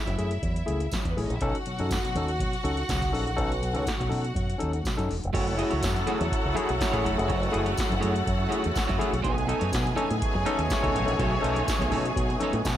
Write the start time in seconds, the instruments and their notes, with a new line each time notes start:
Already playing: string section E4 E5
0.06 fingered electric bass F#1, tine electric piano F#3, closed hi-hat, high conga
0.18 fingered electric bass F#2, tine electric piano A3 E4 G#4, closed hi-hat, muted conga, high conga, low conga
0.31 closed hi-hat
0.43 fingered electric bass E2, tine electric piano F#3, kick, closed hi-hat, muted conga
0.56 closed hi-hat
0.66 fingered electric bass C#2, tine electric piano A3 E4 G#4, closed hi-hat, muted conga, high conga
0.80 tine electric piano E4 G#4, closed hi-hat
0.91 tine electric piano F#3, kick, snare, closed hi-hat, tambourine, muted conga, high conga
1.05 fingered electric bass E2, string section B3, kick, closed hi-hat
1.09 string section B4
1.17 fingered electric bass A1, tine electric piano A3 E4 G#4, string section C#4 C#5, open hi-hat, muted conga, high conga
1.26 string section D#4 D#5, tine electric piano E4 G#4
1.30 fingered electric bass A#1, closed hi-hat
1.34 string section E4 E5
1.41 fingered electric bass B1, tine electric piano C#4 D#4 A4, string section F#4 F#5, kick, closed hi-hat, muted conga, low conga
1.55 closed hi-hat
1.66 tine electric piano B2 F#3, closed hi-hat, muted conga
1.79 fingered electric bass F#2, tine electric piano C#4 D#4 A4, closed hi-hat, high conga
1.91 kick, snare, closed hi-hat, tambourine, muted conga
2.04 tine electric piano B2 F#3, closed hi-hat, high conga
2.15 fingered electric bass D#2, tine electric piano C#4 D#4 A4, closed hi-hat, muted conga, high conga, low conga
2.28 closed hi-hat
2.40 tine electric piano B2 F#3, kick, closed hi-hat, muted conga
2.53 closed hi-hat
2.64 fingered electric bass C#2, tine electric piano C#4 D#4 A4, closed hi-hat, high conga
2.77 tine electric piano D#4 A4, closed hi-hat
2.89 fingered electric bass C#2, tine electric piano B2 F#3, kick, snare, closed hi-hat, tambourine, high conga
3.02 kick, closed hi-hat
3.12 fingered electric bass A#1, tine electric piano C#4 D#4 A4, open hi-hat, high conga
3.25 tine electric piano D#4 A4, closed hi-hat
3.36 fingered electric bass B1, tine electric piano C#4 D#4 A4, kick, closed hi-hat, low conga
3.52 closed hi-hat
3.62 tine electric piano B2 F#3, closed hi-hat
3.73 fingered electric bass C#2, tine electric piano C#4 D#4 A4, closed hi-hat, high conga
3.85 tine electric piano D#4 A4, kick, snare, closed hi-hat, tambourine, muted conga
3.98 fingered electric bass B1, tine electric piano B2 F#3, closed hi-hat, high conga
4.09 fingered electric bass B2, tine electric piano C#4 D#4 A4, open hi-hat, high conga, low conga
4.24 closed hi-hat
4.34 fingered electric bass F#2, tine electric piano B2 F#3, kick, closed hi-hat, muted conga
4.50 closed hi-hat
4.58 tine electric piano C#4 D#4 A4, closed hi-hat, high conga
4.62 fingered electric bass D#2
4.73 tine electric piano D#4 A4, closed hi-hat
4.83 tine electric piano B2 F#3, kick, snare, closed hi-hat, tambourine, high conga
4.97 fingered electric bass F#2, tine electric piano C#4 D#4 A4, closed hi-hat
5.09 fingered electric bass E1, tine electric piano D#4 A4, open hi-hat, muted conga, high conga, low conga
5.24 fingered electric bass F1, closed hi-hat
5.33 fingered electric bass F#1, horn section F#3 E4 A4, tonewheel organ F#3 C#4 E4 A4, tine electric piano F#3, clean electric guitar A3 E4 F#4 C#5, string section F#4 F#5, kick, closed hi-hat, crash, muted conga, low conga
5.47 muted clean electric guitar stroke, closed hi-hat
5.58 clean electric guitar A3 E4 F#4 D#5, tine electric piano E4 G#4, closed hi-hat, muted conga
5.70 fingered electric bass C#2, clean electric guitar A3 E4 F#4 C#5, closed hi-hat, high conga
5.82 fingered electric bass F#2, tine electric piano F#3, muted clean electric guitar stroke, kick, snare, closed hi-hat, tambourine, muted conga
5.94 muted clean electric guitar stroke, closed hi-hat, high conga
6.06 tine electric piano A3 E4 G#4, clean electric guitar A3 E4 F#4 C#5, snare, closed hi-hat, high conga, low conga
6.20 fingered electric bass E2, tine electric piano E4 G#4, muted clean electric guitar stroke, closed hi-hat
6.32 kick, closed hi-hat
6.44 fingered electric bass C#2, muted clean electric guitar stroke
6.54 clean electric guitar A3 E4 F#4 C#5, tine electric piano A3 E4 G#4, closed hi-hat, muted conga, high conga
6.69 fingered electric bass B1, muted clean electric guitar stroke, closed hi-hat
6.79 muted clean electric guitar stroke, kick, snare, closed hi-hat, tambourine, muted conga, high conga
6.92 fingered electric bass A1, tine electric piano A3 E4 G#4, clean electric guitar A3 E4 F#4 C#5, kick, closed hi-hat
7.03 fingered electric bass E1, tine electric piano F#3, clean electric guitar A3 E4 F#4 C#5, closed hi-hat, muted conga, high conga, low conga
7.16 fingered electric bass F1, tine electric piano A3 E4 G#4, muted clean electric guitar stroke, closed hi-hat
7.28 fingered electric bass F#1, tine electric piano F#3, clean electric guitar A3 E4 F#4 C#5, kick, closed hi-hat, muted conga, low conga
7.41 muted clean electric guitar stroke, closed hi-hat
7.52 fingered electric bass F#1, tine electric piano A3 E4 G#4, clean electric guitar A3 E4 F#4 D#5, closed hi-hat, muted conga
7.65 clean electric guitar A3 E4 F#4 C#5, tine electric piano E4 G#4, closed hi-hat, high conga
7.76 tine electric piano E4 G#4, muted clean electric guitar stroke, kick, snare, closed hi-hat, tambourine, muted conga
7.89 fingered electric bass F#1, tine electric piano F#3, muted clean electric guitar stroke, closed hi-hat, high conga
7.99 fingered electric bass F#2, clean electric guitar A3 E4 F#4 C#5, tine electric piano A3 E4 G#4, closed hi-hat, muted conga, high conga, low conga
8.14 muted clean electric guitar stroke, closed hi-hat
8.25 fingered electric bass F#2, tine electric piano F#3, kick, closed hi-hat, muted conga
8.38 muted clean electric guitar stroke
8.49 clean electric guitar A3 E4 F#4 C#5, tine electric piano A3 E4 G#4, closed hi-hat, muted conga, high conga
8.62 fingered electric bass E2, tine electric piano E4 G#4, muted clean electric guitar stroke, closed hi-hat
8.74 muted clean electric guitar stroke, muted fingered electric bass stroke, kick, snare, closed hi-hat, tambourine, muted conga, high conga
8.87 fingered electric bass F#2, clean electric guitar A3 E4 F#4 C#5, kick, closed hi-hat
8.98 tine electric piano A3 E4 G#4, clean electric guitar A3 E4 F#4 C#5, closed hi-hat, muted conga, high conga, low conga
9.12 fingered electric bass B1, muted clean electric guitar stroke, closed hi-hat
9.22 fingered electric bass B1, tine electric piano B2 F#3, clean electric guitar B3 D#4 A4 C#5, tonewheel organ B3, string section G#4 G#5, kick, closed hi-hat, low conga
9.27 tonewheel organ A3 D#4
9.36 muted clean electric guitar stroke, closed hi-hat
9.47 clean electric guitar B3 D#4 A4 D#5, tine electric piano D#4 A4, closed hi-hat, muted conga
9.59 fingered electric bass F#2, clean electric guitar B3 D#4 A4 C#5, closed hi-hat, high conga
9.71 tine electric piano B2 F#3, fingered electric bass B2, muted clean electric guitar stroke, kick, snare, closed hi-hat, tambourine, muted conga
9.84 muted clean electric guitar stroke, closed hi-hat, high conga
9.96 clean electric guitar B3 D#4 A4 C#5, tine electric piano C#4 D#4 A4, snare, closed hi-hat, muted conga, high conga, low conga
10.09 fingered electric bass A2, tine electric piano D#4 A4, muted clean electric guitar stroke, closed hi-hat
10.22 horn section A3 F#4 C#5, kick, closed hi-hat
10.34 fingered electric bass F#2, muted clean electric guitar stroke
10.45 clean electric guitar B3 D#4 A4 C#5, tine electric piano C#4 D#4 A4, closed hi-hat, muted conga, high conga
10.59 fingered electric bass D#2, muted clean electric guitar stroke, closed hi-hat
10.70 muted clean electric guitar stroke, kick, snare, closed hi-hat, tambourine, muted conga, high conga
10.82 fingered electric bass C#2, clean electric guitar B3 D#4 A4 C#5, tine electric piano C#4 D#4 A4, kick, closed hi-hat
10.94 fingered electric bass A1, tine electric piano B2 F#3, clean electric guitar B3 D#4 A4 C#5, closed hi-hat, high conga, low conga
11.06 fingered electric bass A#1, tine electric piano C#4 D#4 A4, muted clean electric guitar stroke, closed hi-hat
11.18 fingered electric bass B1, tine electric piano B2 F#3, clean electric guitar B3 D#4 A4 C#5, kick, closed hi-hat, low conga
11.32 muted clean electric guitar stroke
11.41 fingered electric bass B1, clean electric guitar B3 D#4 A4, tine electric piano C#4 D#4 A4, closed hi-hat, muted conga
11.45 clean electric guitar D#5
11.55 clean electric guitar B3 D#4 A4 C#5, tine electric piano D#4 A4, closed hi-hat, high conga
11.67 tine electric piano D#4 A4, kick, snare, closed hi-hat, tambourine, muted conga
11.79 fingered electric bass B1, tine electric piano B2 F#3, muted clean electric guitar stroke, closed hi-hat, high conga
11.91 fingered electric bass B2, clean electric guitar B3 D#4 A4 C#5, tine electric piano C#4 D#4 A4, open hi-hat, muted conga, high conga, low conga
12.05 muted clean electric guitar stroke, closed hi-hat
12.16 fingered electric bass B2, tine electric piano B2 F#3, kick, closed hi-hat
12.30 muted clean electric guitar stroke, closed hi-hat
12.40 clean electric guitar B3 D#4 A4, tine electric piano C#4 D#4 A4, closed hi-hat, muted conga, high conga
12.44 clean electric guitar C#5
12.53 fingered electric bass A2, tine electric piano D#4 A4, muted clean electric guitar stroke, closed hi-hat
12.65 fingered electric bass B2, muted clean electric guitar stroke, kick, snare, closed hi-hat, tambourine, high conga